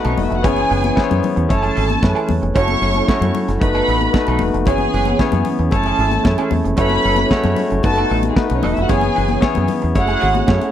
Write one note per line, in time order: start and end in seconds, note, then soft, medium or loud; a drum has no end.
0.00 0.43 A3 medium
0.00 0.46 A3 medium
0.00 0.43 B3 medium
0.00 1.48 B3 medium
0.00 0.43 D#4 medium
0.00 0.46 D#4 medium
0.00 0.46 F#4 medium
0.00 0.45 B4 loud
0.05 0.14 B1 loud
0.05 0.17 F#3 medium
0.05 0.17 B3 medium
0.05 0.17 D#4 medium
0.05 0.18 A4 medium
0.05 closed hi-hat soft
0.05 muted conga soft
0.09 0.17 C#4 medium
0.09 0.18 C#5 medium
0.18 0.27 E1 medium
0.18 0.26 D#4 medium
0.18 0.26 D#5 medium
0.18 muted clean electric guitar stroke soft
0.18 open hi-hat medium
0.18 high conga medium
0.18 low conga medium
0.26 0.35 E4 medium
0.26 0.35 E5 medium
0.30 0.45 F1 medium
0.30 muted clean electric guitar stroke soft
0.30 closed hi-hat medium
0.35 0.44 F#4 medium
0.35 0.44 F#5 medium
0.43 0.63 F#1 loud
0.43 1.49 E3 medium
0.43 0.59 G#3 medium
0.43 0.83 B3 loud
0.43 0.59 B3 medium
0.43 0.83 C#4 medium
0.43 1.49 C#4 medium
0.43 0.84 E4 medium
0.43 0.59 E4 medium
0.43 1.21 G#4 medium
0.43 0.84 G#4 medium
0.43 0.60 G#4 loud
0.43 0.84 C#5 loud
0.43 1.21 G#5 loud
0.43 kick loud
0.43 closed hi-hat medium
0.56 closed hi-hat soft
0.56 high conga medium
0.70 0.90 F#1 loud
0.70 0.82 G#3 medium
0.70 0.82 B3 medium
0.70 0.82 E4 medium
0.70 0.82 G#4 medium
0.70 open hi-hat medium
0.84 0.95 G#3 medium
0.84 0.95 B3 medium
0.84 0.95 E4 medium
0.84 0.96 G#4 medium
0.84 closed hi-hat soft
0.84 high conga medium
0.96 1.36 B3 loud
0.96 1.36 C#4 medium
0.96 1.37 E4 medium
0.96 1.37 G#4 medium
0.96 1.03 C5 loud
0.96 muted clean electric guitar stroke soft
0.96 muted fingered electric bass stroke soft
0.96 kick loud
0.96 snare loud
1.04 1.40 C#5 loud
1.10 1.20 F#2 medium
1.10 muted clean electric guitar stroke medium
1.10 closed hi-hat soft
1.10 muted conga soft
1.10 high conga medium
1.10 low conga medium
1.23 open hi-hat medium
1.23 low conga medium
1.36 1.46 E2 medium
1.36 muted clean electric guitar stroke soft
1.36 closed hi-hat medium
1.49 1.69 F#1 medium
1.49 2.55 E3 medium
1.49 1.89 A3 medium
1.49 2.55 A3 medium
1.49 1.89 C#4 medium
1.49 3.59 C#4 medium
1.49 1.89 E4 medium
1.49 2.27 A4 medium
1.49 1.90 A4 medium
1.49 1.90 C#5 loud
1.49 2.27 A5 loud
1.49 muted clean electric guitar stroke soft
1.49 kick loud
1.49 closed hi-hat medium
1.62 1.74 G#3 medium
1.62 1.75 C#4 medium
1.62 1.75 E4 medium
1.62 1.75 G#4 medium
1.62 closed hi-hat soft
1.75 1.96 G#1 loud
1.75 1.91 G#3 medium
1.75 1.88 C#4 medium
1.75 1.88 E4 medium
1.75 1.88 G#4 medium
1.75 open hi-hat medium
1.89 muted clean electric guitar stroke medium
1.89 closed hi-hat soft
1.89 high conga medium
2.02 2.12 F#2 loud
2.02 2.42 A3 medium
2.02 2.42 C#4 medium
2.02 2.43 E4 medium
2.02 2.43 G#4 medium
2.02 2.43 B4 loud
2.02 muted clean electric guitar stroke soft
2.02 kick loud
2.02 snare loud
2.02 muted conga soft
2.15 2.28 G#3 medium
2.15 2.28 C#4 medium
2.15 2.28 E4 medium
2.15 2.29 G#4 medium
2.15 closed hi-hat soft
2.29 2.39 E2 medium
2.29 muted clean electric guitar stroke soft
2.29 open hi-hat medium
2.29 high conga medium
2.29 low conga medium
2.42 2.52 F1 loud
2.42 muted clean electric guitar stroke soft
2.42 closed hi-hat medium
2.55 2.75 F#1 loud
2.55 3.60 F#3 medium
2.55 2.95 A3 medium
2.55 2.71 A3 medium
2.55 2.95 C#4 medium
2.55 2.71 C#4 medium
2.55 2.95 E4 medium
2.55 2.71 E4 medium
2.55 3.61 E4 medium
2.55 2.96 F#4 loud
2.55 3.60 A4 medium
2.55 2.71 A4 medium
2.55 3.33 C#5 loud
2.55 2.96 C#5 loud
2.55 3.33 C#6 loud
2.55 kick loud
2.55 closed hi-hat medium
2.68 closed hi-hat soft
2.68 muted conga soft
2.68 high conga medium
2.81 3.01 F#1 loud
2.81 2.94 A3 medium
2.81 2.94 C#4 medium
2.81 2.94 E4 medium
2.81 2.94 A4 medium
2.81 open hi-hat medium
2.94 3.07 A3 medium
2.94 3.07 C#4 medium
2.94 3.07 E4 medium
2.94 3.07 A4 medium
2.94 closed hi-hat soft
2.94 high conga medium
3.08 3.48 A3 medium
3.08 3.48 C#4 medium
3.08 3.48 E4 medium
3.08 3.48 F#4 medium
3.08 3.49 C#5 loud
3.08 muted clean electric guitar stroke soft
3.08 muted fingered electric bass stroke medium
3.08 kick loud
3.08 snare loud
3.08 muted conga soft
3.21 3.31 F#2 loud
3.21 muted clean electric guitar stroke soft
3.21 closed hi-hat soft
3.21 muted conga soft
3.21 high conga medium
3.21 low conga medium
3.34 open hi-hat medium
3.34 low conga medium
3.48 3.58 F#1 medium
3.48 muted clean electric guitar stroke soft
3.48 snare soft
3.48 closed hi-hat medium
3.60 3.80 F#1 medium
3.60 4.01 A3 medium
3.60 4.66 A3 medium
3.60 4.01 B3 medium
3.60 5.71 B3 medium
3.60 4.66 D#4 medium
3.60 4.01 D#4 medium
3.60 4.01 F#4 medium
3.60 4.38 B4 medium
3.60 4.01 B4 loud
3.60 4.39 B5 loud
3.60 muted clean electric guitar stroke soft
3.60 kick loud
3.60 closed hi-hat medium
3.75 3.87 F#3 medium
3.75 3.87 B3 medium
3.75 3.88 D#4 medium
3.75 3.88 A4 medium
3.75 closed hi-hat soft
3.87 4.07 A1 loud
3.87 4.00 F#3 medium
3.87 4.00 B3 medium
3.87 4.00 D#4 medium
3.87 3.99 A4 medium
3.87 open hi-hat medium
4.01 muted clean electric guitar stroke soft
4.01 closed hi-hat soft
4.01 high conga medium
4.13 4.53 A3 medium
4.13 4.53 B3 medium
4.13 4.54 D#4 medium
4.13 4.54 F#4 medium
4.13 4.21 A4 medium
4.13 muted clean electric guitar stroke soft
4.13 kick loud
4.13 snare loud
4.13 muted conga soft
4.21 4.57 B4 medium
4.27 4.37 B1 loud
4.27 4.39 F#3 medium
4.27 4.40 B3 medium
4.27 4.40 D#4 medium
4.27 4.40 A4 medium
4.27 closed hi-hat soft
4.27 muted conga soft
4.39 4.50 E1 medium
4.39 muted clean electric guitar stroke soft
4.39 open hi-hat medium
4.39 high conga medium
4.39 low conga medium
4.54 4.67 F1 medium
4.54 muted clean electric guitar stroke medium
4.54 closed hi-hat medium
4.65 4.86 F#1 loud
4.65 4.82 E3 medium
4.65 5.71 E3 medium
4.65 5.06 B3 medium
4.65 4.82 B3 medium
4.65 5.06 C#4 medium
4.65 7.81 C#4 medium
4.65 4.83 C#4 medium
4.65 5.07 E4 medium
4.65 5.44 G#4 loud
4.65 5.07 G#4 medium
4.65 4.83 G#4 medium
4.65 5.07 C#5 loud
4.65 5.44 G#5 loud
4.65 kick loud
4.65 closed hi-hat medium
4.65 muted conga soft
4.78 closed hi-hat soft
4.78 high conga medium
4.93 5.12 F#1 loud
4.93 5.06 E3 medium
4.93 5.06 B3 medium
4.93 5.06 C#4 medium
4.93 5.06 G#4 medium
4.93 open hi-hat medium
5.05 5.18 E3 medium
5.05 5.18 B3 medium
5.05 5.19 C#4 medium
5.05 5.19 G#4 medium
5.05 closed hi-hat soft
5.05 high conga medium
5.19 5.59 B3 loud
5.19 5.59 C#4 medium
5.19 5.59 E4 medium
5.19 5.60 G#4 medium
5.19 5.60 C#5 loud
5.19 muted clean electric guitar stroke soft
5.19 muted fingered electric bass stroke medium
5.19 kick loud
5.19 snare loud
5.19 muted conga soft
5.32 5.42 F#2 medium
5.32 muted clean electric guitar stroke soft
5.32 closed hi-hat soft
5.32 muted conga soft
5.32 high conga medium
5.32 low conga medium
5.45 open hi-hat medium
5.45 low conga medium
5.59 5.69 E2 medium
5.59 muted clean electric guitar stroke soft
5.59 closed hi-hat soft
5.71 5.91 F#1 loud
5.71 6.77 E3 medium
5.71 6.11 A3 medium
5.71 6.77 A3 medium
5.71 6.12 C#4 medium
5.71 6.12 E4 medium
5.71 6.12 A4 medium
5.71 6.50 A4 loud
5.71 6.12 C#5 loud
5.71 6.50 A5 loud
5.71 muted clean electric guitar stroke soft
5.71 kick loud
5.71 closed hi-hat medium
5.71 muted conga soft
5.83 5.98 G#3 soft
5.83 5.98 C#4 medium
5.83 5.98 E4 medium
5.83 5.98 G#4 medium
5.83 closed hi-hat soft
5.83 muted conga soft
5.98 6.18 G#1 loud
5.98 6.14 G#3 medium
5.98 6.11 C#4 medium
5.98 6.11 E4 loud
5.98 6.11 G#4 loud
5.98 open hi-hat medium
6.11 muted clean electric guitar stroke medium
6.11 closed hi-hat soft
6.11 high conga medium
6.24 6.35 F#2 loud
6.24 6.64 A3 medium
6.24 6.64 C#4 medium
6.24 6.65 E4 medium
6.24 6.65 G#4 medium
6.24 6.65 C#5 medium
6.24 muted clean electric guitar stroke soft
6.24 kick loud
6.24 snare loud
6.24 muted conga soft
6.38 6.51 G#3 medium
6.38 6.51 C#4 medium
6.38 6.51 E4 medium
6.38 6.51 G#4 medium
6.38 closed hi-hat medium
6.38 muted conga soft
6.51 6.61 E2 loud
6.51 muted clean electric guitar stroke medium
6.51 open hi-hat medium
6.51 high conga medium
6.51 low conga medium
6.65 6.75 F1 loud
6.65 muted clean electric guitar stroke soft
6.65 closed hi-hat medium
6.76 6.97 F#1 loud
6.76 6.93 F#3 medium
6.76 7.83 F#3 medium
6.76 7.17 A3 loud
6.76 7.17 C#4 loud
6.76 6.94 C#4 medium
6.76 7.18 E4 medium
6.76 7.83 E4 medium
6.76 6.94 E4 medium
6.76 7.18 F#4 medium
6.76 7.83 A4 medium
6.76 6.94 A4 medium
6.76 7.56 B4 loud
6.76 7.18 C#5 loud
6.76 7.56 B5 loud
6.76 kick loud
6.76 closed hi-hat medium
6.76 muted conga soft
6.90 closed hi-hat soft
6.90 muted conga soft
6.90 high conga medium
7.04 7.24 F#1 loud
7.04 7.17 F#3 medium
7.04 7.17 C#4 medium
7.04 7.17 E4 medium
7.04 7.17 A4 medium
7.04 open hi-hat medium
7.16 7.30 F#3 medium
7.16 7.30 C#4 medium
7.16 7.30 E4 medium
7.16 7.30 A4 medium
7.16 closed hi-hat soft
7.16 high conga medium
7.30 7.37 G#3 medium
7.30 7.70 C#4 medium
7.30 7.71 E4 medium
7.30 7.71 F#4 loud
7.30 7.71 C#5 loud
7.30 muted clean electric guitar stroke soft
7.30 muted fingered electric bass stroke medium
7.30 kick medium
7.30 snare loud
7.36 7.73 A3 loud
7.44 7.54 F#2 loud
7.44 muted clean electric guitar stroke medium
7.44 closed hi-hat soft
7.44 muted conga soft
7.44 high conga medium
7.44 low conga medium
7.56 open hi-hat medium
7.56 low conga medium
7.70 7.81 F#1 medium
7.70 muted clean electric guitar stroke soft
7.70 closed hi-hat medium
7.83 8.03 F#1 medium
7.83 8.23 A3 medium
7.83 8.89 A3 medium
7.83 8.24 B3 medium
7.83 9.93 B3 medium
7.83 8.24 D#4 medium
7.83 8.89 D#4 medium
7.83 8.24 F#4 medium
7.83 8.22 A4 medium
7.83 8.24 B4 loud
7.83 8.22 A5 loud
7.83 muted clean electric guitar stroke soft
7.83 kick loud
7.83 closed hi-hat medium
7.83 muted conga soft
7.96 8.09 F#3 soft
7.96 8.09 B3 medium
7.96 8.09 D#4 medium
7.96 8.09 A4 medium
7.96 closed hi-hat soft
7.96 muted conga soft
8.10 8.30 A1 loud
8.10 8.26 F#3 medium
8.10 8.24 B3 medium
8.10 8.23 D#4 medium
8.10 8.23 A4 medium
8.10 open hi-hat medium
8.23 muted clean electric guitar stroke medium
8.23 closed hi-hat medium
8.23 high conga medium
8.29 8.37 G#3 medium
8.29 8.37 G#4 medium
8.35 8.76 A3 medium
8.35 8.45 A3 medium
8.35 8.76 B3 medium
8.35 8.76 D#4 medium
8.35 8.76 F#4 medium
8.35 8.45 A4 medium
8.35 8.77 B4 medium
8.35 kick loud
8.35 snare loud
8.46 8.54 B3 medium
8.46 8.55 B4 medium
8.46 closed hi-hat soft
8.50 8.60 B1 loud
8.50 muted clean electric guitar stroke medium
8.50 muted conga soft
8.55 8.63 C#4 medium
8.55 8.63 C#5 medium
8.63 8.73 E1 medium
8.63 8.78 F#3 medium
8.63 8.76 B3 loud
8.63 8.75 D#4 medium
8.63 8.73 D#4 medium
8.63 8.75 A4 loud
8.63 8.73 D#5 medium
8.63 open hi-hat medium
8.63 high conga medium
8.63 low conga medium
8.73 8.81 E4 medium
8.73 8.81 E5 medium
8.73 muted clean electric guitar stroke soft
8.73 closed hi-hat medium
8.78 8.87 F1 loud
8.78 8.90 F#4 medium
8.78 8.90 F#5 medium
8.89 9.09 F#1 loud
8.89 9.05 E3 loud
8.89 9.94 E3 medium
8.89 9.29 B3 loud
8.89 9.05 B3 loud
8.89 9.29 C#4 medium
8.89 10.72 C#4 medium
8.89 9.05 C#4 loud
8.89 9.29 E4 medium
8.89 9.29 G#4 loud
8.89 9.05 G#4 loud
8.89 9.68 G#4 medium
8.89 9.30 C#5 loud
8.89 9.68 G#5 loud
8.89 kick loud
8.89 closed hi-hat medium
8.89 muted conga soft
9.01 closed hi-hat soft
9.01 high conga medium
9.15 9.36 F#1 loud
9.15 9.28 E3 medium
9.15 9.28 B3 medium
9.15 9.28 C#4 medium
9.15 9.28 G#4 medium
9.15 open hi-hat medium
9.29 9.41 E3 medium
9.29 9.41 B3 medium
9.29 9.41 C#4 medium
9.29 9.41 G#4 medium
9.29 closed hi-hat medium
9.29 high conga medium
9.41 9.81 B3 loud
9.41 9.81 C#4 medium
9.41 9.82 E4 loud
9.41 9.82 G#4 medium
9.41 9.82 C#5 loud
9.41 muted clean electric guitar stroke soft
9.41 muted fingered electric bass stroke medium
9.41 kick loud
9.41 snare loud
9.41 muted conga soft
9.55 9.66 F#2 medium
9.55 muted clean electric guitar stroke soft
9.55 closed hi-hat soft
9.55 muted conga soft
9.55 high conga medium
9.55 low conga medium
9.68 open hi-hat medium
9.68 low conga medium
9.82 9.93 E2 loud
9.82 muted clean electric guitar stroke soft
9.82 closed hi-hat medium
9.95 10.15 F#1 loud
9.95 10.35 A3 medium
9.95 10.72 A3 medium
9.95 10.35 C#4 medium
9.95 10.35 E4 medium
9.95 10.72 F#4 medium
9.95 10.35 G#4 medium
9.95 10.72 G#4 medium
9.95 10.35 C#5 loud
9.95 10.72 F#5 loud
9.95 muted clean electric guitar stroke soft
9.95 kick loud
9.95 closed hi-hat medium
9.95 muted conga soft
10.08 10.19 G#3 soft
10.08 10.20 C#4 medium
10.08 10.20 E4 medium
10.08 10.20 G#4 medium
10.08 closed hi-hat soft
10.08 muted conga soft
10.21 10.41 G#1 loud
10.21 10.36 G#3 loud
10.21 10.33 C#4 medium
10.21 10.33 E4 loud
10.21 10.33 G#4 loud
10.21 open hi-hat medium
10.34 muted clean electric guitar stroke medium
10.34 closed hi-hat medium
10.34 high conga medium
10.46 10.58 F#2 loud
10.46 10.63 G#3 medium
10.46 10.72 A3 medium
10.46 10.59 C#4 medium
10.46 10.72 C#4 medium
10.46 10.59 E4 medium
10.46 10.72 E4 medium
10.46 10.58 G#4 loud
10.46 10.72 G#4 medium
10.46 10.72 C#5 medium
10.46 kick loud
10.46 snare loud
10.46 muted conga soft
10.59 muted clean electric guitar stroke soft
10.59 closed hi-hat soft
10.59 muted conga soft